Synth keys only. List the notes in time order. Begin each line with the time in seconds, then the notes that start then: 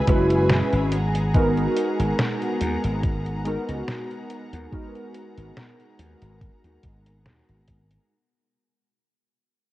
0.07 G#3 C#4 E4 F#4 B4
1.34 G#3 B3 D#4 F#4 A#4
3.44 G#3 B3 D#4 F#4 A#4
4.71 G#3 B3 D#4 F#4 A#4